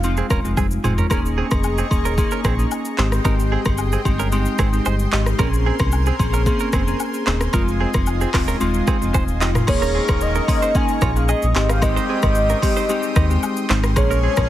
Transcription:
Already playing: F1 F5
0.03 G#3 C4 D#4 F4, high agogo, shaker
0.17 C4 G#4, shaker
0.30 D#1 C#4 A#4, kick, cross-stick, high agogo, shaker
0.44 F1 G#3 C4 D#4 F4, shaker
0.57 F1 C4 G#4, kick, high tom, low woodblock, shaker
0.71 shaker
0.84 F1 G#3 C4 D#4 F4 G#4, mid tom, high agogo, shaker
0.98 C#4 A#4, floor tom, shaker
1.10 D#1 A#3 C#4 D#4 G#4 A#4 D#5 A#5 C#6, kick, cross-stick, high agogo, shaker
1.26 shaker
1.38 C4 G#4
1.51 F1, kick, cross-stick, high agogo, shaker
1.64 low woodblock, shaker
1.78 C4 G#4, shaker
1.91 D#1 A#3 C#4 D#4 G#4, kick, high agogo, shaker
2.05 C#4 A#4, shaker
2.17 A#3 C#4 D#4 G#4, kick, high agogo, shaker
2.31 C#4 A#4, shaker
2.44 A#1 C4 G#4, kick, cross-stick, high agogo, shaker
2.58 A#3 C#4 D#4 G#4, shaker
2.71 low woodblock, shaker
2.85 shaker
2.98 G#1 G#3 C4 D#4 G4 C5 D#5 G5 C6, clap, high agogo
3.12 cross-stick, shaker
3.25 G#1 G#3 C4 D#4 G4 A#4, kick, cross-stick, high agogo, shaker
3.40 shaker
3.52 C4 G#4
3.65 G1, kick, cross-stick, high agogo, shaker
3.78 low woodblock, shaker
3.92 C4 G#4, shaker
4.05 G1 G#3 C4 D#4 G4, kick, high agogo, shaker
4.20 C#4 A#4, shaker
4.32 G#3 C4 D#4 G4, high agogo, shaker
4.45 shaker
4.58 G#1 C4 G#4, kick, cross-stick, high agogo, shaker
4.72 G#3 C4 D#4 G4, shaker
4.86 G1 D#4 C5, low woodblock, shaker
4.99 shaker
5.12 G#1 G#3 C4 D#4 G4 D#5, clap, high agogo
5.26 cross-stick, shaker
5.39 A#1 A#3 C4 C#4 G#4 A#4 C5 G#5, kick, cross-stick, high agogo, shaker
5.54 shaker
5.66 C4 G#4
5.79 C2, kick, cross-stick, high agogo, shaker
5.92 low woodblock, shaker
6.06 C4 G#4, shaker
6.19 A#1 A#3 C4 C#4 G#4, kick, high agogo, shaker
6.34 C#4 A#4, shaker
6.46 A#3 C4 C#4 G#4, kick, high agogo, shaker
6.59 C#4 A#4, shaker
6.73 F1 C4 G#4, kick, cross-stick, high agogo, shaker
6.87 A#3 C4 C#4 G#4, shaker
7.00 low woodblock, shaker
7.14 shaker
7.26 D#1 A#3 C4 C#4 D#4 G#4 C5, clap, high agogo
7.41 cross-stick, shaker
7.53 F1 G#3 C4 D#4 F4 A#4 D#5, kick, cross-stick, high agogo, shaker
7.68 shaker
7.81 C4 G#4
7.94 F1, kick, cross-stick, high agogo, shaker
8.06 low woodblock, shaker
8.21 C4 G#4, shaker
8.34 D#1 G#3 C4 D#4 F4, kick, cross-stick, clap, open hi-hat, high agogo
8.48 C#4 A#4, shaker
8.60 D#1 G#3 C4 D#4 F4, high agogo, shaker
8.74 shaker
8.87 C4 G#4, kick, cross-stick, high agogo, shaker
9.01 F1 G#3 C4 D#4 F4, shaker
9.14 D#1 D#4 C5, kick, low woodblock, shaker
9.28 shaker
9.41 F1 G#3 C4 D#4 F4 G4 D#5, clap, high agogo, shaker
9.55 cross-stick, mid tom, shaker
9.67 D#1 D#3 G#3 A#3 C#4 D#4 G#4 A#4 C#5 D#5 A#5 C#6, kick, cross-stick, crash, high agogo, shaker
9.82 C#4 A#4, shaker
9.95 C4 G#4
10.08 D#1, kick, cross-stick, high agogo, shaker
10.21 D#5, shaker
10.35 C#4 A#4, shaker
10.48 A#3 C#4 D#4 G#4, kick, open hi-hat, high agogo, shaker
10.62 D#4 C5, shaker
10.75 A#3 C#4 D#4 G#4 G#5, kick, high agogo, shaker
10.88 shaker
11.01 A#1 F4 C#5, kick, cross-stick, high agogo, shaker
11.15 A#3 C#4 D#4 G#4 F5, shaker
11.29 G#4 D#5, low woodblock, shaker
11.42 A#1, shaker
11.55 G#1 D#3 G3 G#3 C4 D#4 G4 G5 C6 D#6, clap, high agogo
11.69 F5, cross-stick, shaker
11.82 G#3 C4 D#4 G4 D#5, kick, cross-stick, high agogo, shaker
11.96 D#4 C5, shaker
12.09 C4 G#4
12.22 G#1 D#5, kick, cross-stick, high agogo, shaker
12.35 shaker
12.50 C#4 A#4, shaker
12.62 G#3 C4 D#4 G4, kick, open hi-hat, high agogo, shaker
12.77 D#4 C5, shaker
12.89 G#3 C4 D#4 G4, high agogo, shaker
13.03 shaker
13.16 D#2 G4 D#5, kick, cross-stick, high agogo, shaker
13.30 G#3 C4 D#4 G4, shaker
13.43 low woodblock, shaker
13.57 shaker
13.69 G#1 G#3 C4 D#4 G4 C5, clap, high agogo
13.84 cross-stick, shaker
13.96 A#1 F3 G#3 A#3 C#4 G#4 A#4 C#5 G#5 C#6, kick, cross-stick, high agogo, shaker
14.11 C#4 A#4, shaker
14.23 C4 G#4
14.37 A#1, kick, cross-stick, high agogo, shaker

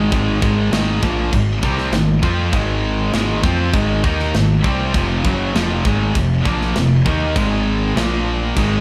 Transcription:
Already playing: G#2 D#3 G#3
0.11 G#1 G#2 D#3 G#3, kick, crash
0.42 G#1 G#2 D#3 G#3, kick
0.72 G#1 G#2 D#3 G#3, snare, crash
1.03 A#1 A#2 F3 A#3, kick
1.33 G#1 G#2 D#3, kick, crash
1.63 C2 C3 G3 C4, kick
1.78 snare
1.92 G#1 G#2 D#3, snare, crash
2.22 F2 F3 C4 F4, kick
2.52 G#1 G#2 D#3 G#3, kick, crash
3.12 G#1 G#2 D#3 G#3, snare, crash
3.42 F2 F3 C4 F4, kick
3.72 G#1 G#2 D#3 G#3, kick, crash
4.02 D#2 D#3 A#3 D#4, kick
4.20 snare
4.33 G#1 G#2 D#3, snare, crash
4.63 C2 C3 G3 C4, kick
4.93 F1 F2 C3 F3, kick, crash
5.24 F#1 F#2 C#3 F#3, kick
5.54 F1 F2 C3 F3, snare, crash
5.84 G#1 G#2 D#3 G#3, kick
6.13 F1 F2 C3, kick, crash
6.44 A#1 A#2 F3 A#3, kick
6.61 snare
6.74 F1 F2 C3, snare, crash
7.05 D#2 D#3 A#3 D#4, kick
7.36 G#1 G#2 D#3 G#3, kick, crash
7.95 A#1 A#2 F3 A#3, snare, crash
8.57 G#1 G#2 D#3 G#3, kick, crash

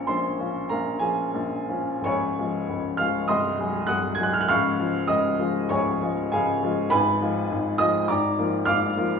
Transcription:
Already playing: A#1 A#2 F3 C#4 F4 C#5 A#5 C#6
0.07 A#1 A#2 C5 C6
0.39 F3 C#4 F4
0.69 A#1 A#2 A#4 F5 A#5
0.99 F3 C#4 F4 G#4 G#5
1.34 A#1 A#2
1.69 F3 C#4 F4
2.01 C#1 C#6
2.05 C#2 C#5 G#5
2.39 F3 G#3 F4
2.69 C#1 C#2
2.97 F3 G#3 F4 F5 F6
3.28 C1 C2 D#5 C6 D#6
3.59 F#3 G#3 G#4
3.87 C1 C2 F#5 D#6 F#6
4.15 G#6
4.20 F#3 G#3 G#4 F#6
4.33 F6
4.41 F#6
4.49 C#1 C#2 F5 C#6 F6
4.79 F3 G#3 F4
5.08 C#1 C#2 D#5 D#6
5.39 F3 G#3 F4
5.69 C#1 C#2 C#5 G#5 C#6
6.02 F3 G#3 F4
6.32 C#1 C#2 G#4 F5 G#5
6.63 F3 G#3 F4
6.90 G#1 G#2 B4 G#5 B5
7.21 F3 G#3 F4
7.51 G#1 G#2
7.78 F3 G#3 F4 D#5 D#6
8.08 G#1 G#2 D5 A#5 D6
8.39 F3 A#3 F4
8.65 G#1 G#2 F5 D6 F6
8.97 F3 A#3 F4

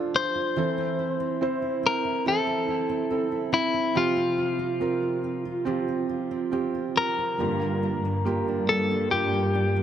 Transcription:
Already playing: F3 D4 F4 G4 A4 C5, downlifter
0.14 D4 C5
0.35 F4
0.56 E3 C4 E4 A4
0.78 C4
0.99 E4
1.20 C4
1.41 C4 E4 C5
1.62 E4
1.83 C4 A#4
2.05 E4
2.26 E3 C4 E4 A4
2.47 C4
2.68 E4
2.89 C4
3.10 C4 E4 A4
3.32 E4
3.52 C4 E4
3.74 E4
3.95 C3 F3 C4 F4 G4
4.17 C4
4.38 F4
4.59 C4
4.80 C4 F4 G4 A#4
5.02 F4
5.24 C4
5.45 F4
5.65 F3 C4 F4 G4
5.88 C4
6.09 F4
6.31 C4
6.52 C4 F4 G4
6.75 F4
6.96 C4 A#4
7.18 F4
7.39 G2 D3 A#3 F4 G4
7.62 A#3
7.83 D4
8.04 G2 A#3
8.25 A#3 F4 G4
8.48 D4
8.69 A#3 A4
8.91 D4
9.11 G2 A#3 F4 G4
9.33 A#3
9.55 D4
9.76 A#3

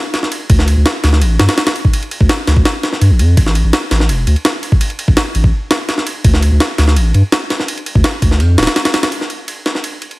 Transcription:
0.14 snare, ride
0.23 snare
0.32 ride
0.50 D2, kick, ride
0.59 snare
0.68 ride
0.77 D2
0.86 snare, ride
1.04 D2, snare, ride
1.13 snare
1.22 A1, ride
1.39 G2, snare, ride
1.49 snare, ride
1.58 snare, ride
1.67 snare, ride
1.76 ride
1.85 kick
1.93 ride
2.03 ride
2.11 ride
2.21 D2, kick
2.29 snare, ride
2.47 D2, snare, ride
2.57 kick
2.65 snare, ride
2.83 snare, ride
2.93 snare
3.01 G2, ride
3.10 A1
3.19 F2, ride
3.37 A1, kick, ride
3.46 snare
3.55 ride
3.64 A1
3.73 snare, ride
3.91 A1, snare, ride
4.00 snare
4.09 E1, ride
4.27 D2, ride
4.36 ride
4.45 snare, ride
4.63 ride
4.72 kick
4.81 ride
4.90 ride
4.99 ride
5.08 A1, kick
5.17 snare, ride
5.35 A1, ride
5.44 kick
5.71 snare, ride
5.89 snare, ride
5.98 snare
6.07 ride
6.24 D2, kick, ride
6.34 snare
6.42 ride
6.52 D2
6.60 snare, ride
6.78 D2, snare, ride
6.88 snare
6.96 A1, ride
7.14 G2, ride
7.32 snare, ride
7.50 snare, ride
7.60 snare
7.68 ride
7.78 ride
7.86 ride
7.95 D2, kick
8.04 snare, ride
8.22 D2, kick, ride
8.31 snare
8.40 F2, ride
8.58 D1, snare, ride
8.63 snare, ride
8.67 snare, ride
8.76 snare, ride
8.85 snare, ride
8.94 snare, ride
9.03 snare, ride
9.12 ride
9.21 snare
9.30 ride
9.48 ride
9.66 snare, ride
9.75 snare
9.84 ride
10.02 ride
10.11 ride

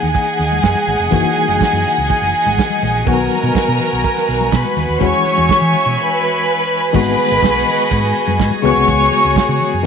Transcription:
Already playing: E3 A#3 D#4 G#4 D#5 F#5 G#5
0.00 D#2, closed hi-hat
0.14 kick, closed hi-hat, muted conga
0.27 closed hi-hat
0.38 D#2, open hi-hat
0.51 closed hi-hat, high conga
0.63 F#2, kick, snare
0.75 closed hi-hat, muted conga, high conga
0.88 G#1, open hi-hat, high conga, low conga
0.99 F1, closed hi-hat
1.11 F#1 E3 A#3 D#4 F#4, kick, closed hi-hat, low conga
1.24 closed hi-hat, muted conga
1.36 open hi-hat, high conga
1.48 F#1, closed hi-hat, high conga
1.61 muted fingered electric bass stroke, kick, snare, muted conga
1.73 F#2, closed hi-hat, muted conga
1.85 open hi-hat, low conga
1.96 C#2, closed hi-hat
2.10 kick, closed hi-hat, muted conga
2.22 F#1, closed hi-hat, muted conga
2.33 open hi-hat
2.46 G#1, closed hi-hat, high conga
2.58 kick, snare
2.70 closed hi-hat, high conga
2.83 A#1, open hi-hat, high conga, low conga
2.94 closed hi-hat
3.05 B1 D#3 F#3 B3 F#4 A#4 A#5, kick, closed hi-hat, muted conga, low conga
3.19 closed hi-hat, muted conga
3.31 open hi-hat, high conga
3.42 B2, closed hi-hat, high conga
3.55 muted fingered electric bass stroke, kick, snare
3.67 B2, closed hi-hat, muted conga
3.79 open hi-hat, low conga
3.90 B1, closed hi-hat
4.04 kick, closed hi-hat
4.16 snare, closed hi-hat, muted conga
4.27 B1, open hi-hat
4.41 closed hi-hat, high conga
4.52 B2 B4 B5, kick, snare, muted conga
4.65 closed hi-hat, muted conga, high conga
4.77 D#2, open hi-hat, high conga, low conga
4.88 D#2, closed hi-hat
4.99 E2 E3 G#3 C#4 F#4 C#5 E5 G#5 C#6, kick, closed hi-hat, muted conga, low conga
5.13 closed hi-hat, muted conga
5.25 open hi-hat, high conga
5.37 E2, closed hi-hat, high conga
5.49 muted fingered electric bass stroke, kick, snare, muted conga
5.61 E3, closed hi-hat
5.73 open hi-hat, low conga
5.84 B2, closed hi-hat
5.98 B4 B5
6.93 G#1 D#3 G#3 B3 F#4 G#4 B4 D#5 G#5 B5, kick, crash, muted conga, low conga
7.07 closed hi-hat
7.18 open hi-hat, high conga
7.30 G#1, closed hi-hat, high conga
7.42 B1, kick, snare
7.54 closed hi-hat, muted conga
7.66 open hi-hat, low conga
7.77 closed hi-hat
7.91 G#2, kick, closed hi-hat
8.03 snare, closed hi-hat, muted conga
8.14 open hi-hat
8.27 F#2, closed hi-hat, high conga
8.40 G#2, kick, snare
8.51 closed hi-hat, muted conga, high conga
8.62 C#2 C#3 G#3 B3 F#4 C#5 C#6, open hi-hat, high conga, low conga
8.75 C2, closed hi-hat
8.88 C#2, kick, closed hi-hat, low conga
9.01 closed hi-hat
9.12 open hi-hat, high conga
9.24 C#2, closed hi-hat, high conga
9.36 muted fingered electric bass stroke, kick, snare, muted conga
9.48 C#3, closed hi-hat, muted conga
9.60 open hi-hat, low conga
9.71 F#2, closed hi-hat
9.83 D#3 D#5

